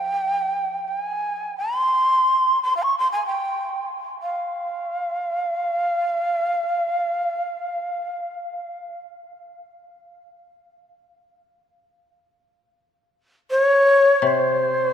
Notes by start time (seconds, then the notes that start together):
Already playing: F3 G5
0.88 G5
1.00 G#5
1.58 C6
2.63 C6
2.77 F5
2.83 C#6
2.99 C6
3.12 G#5
3.26 G5
4.23 F5
13.51 C#5
14.22 C3
14.27 C5